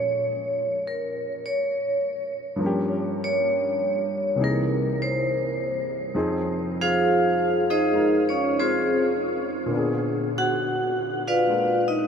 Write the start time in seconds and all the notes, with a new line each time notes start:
Already playing: A#2 F3 G#3 C#4 C#5
0.87 A#4
1.46 C#5
2.56 G2 F3
2.61 A#3 C#4
2.66 G4
3.24 C#5
4.36 C2 C3 E3
4.40 A#3 D#4 G#4
4.44 A#4
5.02 C5
6.15 F2 F3 C4 D#4 G#4
6.81 F4 G#4 C5 F5
7.70 D#4 G#4 C5 D#5
7.92 G#3 D#4 F4 A#4
8.29 C#4 C#5
8.60 C4 F4 G#4 C5
9.66 A#2 D3
9.71 B3 D4
9.77 G#4
10.38 F#4 F#5
11.27 F4 B4 D5 F5
11.47 G#3 A#3 D4 F4
11.88 D#4 D#5